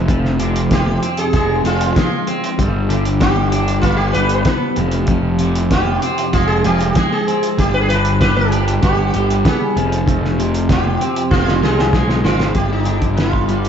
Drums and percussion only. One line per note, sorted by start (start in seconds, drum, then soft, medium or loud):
0.08 kick loud
0.08 closed hi-hat medium
0.25 snare soft
0.40 closed hi-hat medium
0.56 closed hi-hat medium
0.71 kick loud
0.71 snare loud
0.71 closed hi-hat medium
1.03 closed hi-hat medium
1.17 closed hi-hat medium
1.33 kick loud
1.33 closed hi-hat medium
1.65 closed hi-hat medium
1.81 closed hi-hat medium
1.96 kick loud
1.96 snare loud
1.96 closed hi-hat medium
2.27 closed hi-hat medium
2.44 closed hi-hat medium
2.59 kick loud
2.59 closed hi-hat medium
2.90 closed hi-hat medium
3.05 closed hi-hat medium
3.21 kick loud
3.21 snare loud
3.21 closed hi-hat medium
3.52 closed hi-hat medium
3.68 closed hi-hat medium
3.83 kick loud
3.83 closed hi-hat medium
4.14 closed hi-hat medium
4.29 closed hi-hat medium
4.45 kick loud
4.45 snare loud
4.45 closed hi-hat medium
4.76 closed hi-hat medium
4.91 closed hi-hat medium
5.07 kick loud
5.07 closed hi-hat medium
5.39 closed hi-hat medium
5.55 closed hi-hat medium
5.71 kick loud
5.71 snare loud
5.71 closed hi-hat medium
6.02 closed hi-hat medium
6.18 closed hi-hat medium
6.33 kick loud
6.33 closed hi-hat medium
6.64 closed hi-hat medium
6.81 closed hi-hat medium
6.95 kick loud
6.95 snare loud
6.95 closed hi-hat medium
7.28 closed hi-hat medium
7.43 closed hi-hat medium
7.59 kick loud
7.59 closed hi-hat medium
7.90 closed hi-hat medium
8.05 closed hi-hat medium
8.21 kick medium
8.21 snare loud
8.21 closed hi-hat medium
8.52 closed hi-hat medium
8.68 closed hi-hat medium
8.83 kick loud
8.83 closed hi-hat medium
9.14 closed hi-hat medium
9.30 closed hi-hat medium
9.45 kick loud
9.45 snare loud
9.45 closed hi-hat medium
9.77 closed hi-hat medium
9.92 closed hi-hat medium
10.08 kick loud
10.08 closed hi-hat medium
10.25 snare soft
10.40 closed hi-hat medium
10.54 closed hi-hat medium
10.69 kick loud
10.69 snare loud
10.69 closed hi-hat medium
11.01 closed hi-hat medium
11.16 closed hi-hat medium
11.31 kick loud
11.31 snare medium
11.48 snare medium
11.64 snare medium
11.79 snare medium
11.93 kick loud
11.93 snare medium
12.09 snare medium
12.25 snare medium
12.40 snare medium
12.55 kick medium
12.55 closed hi-hat medium
12.85 closed hi-hat medium
13.02 kick medium
13.02 closed hi-hat medium
13.17 snare medium
13.17 closed hi-hat medium
13.33 kick medium
13.49 closed hi-hat medium
13.65 closed hi-hat medium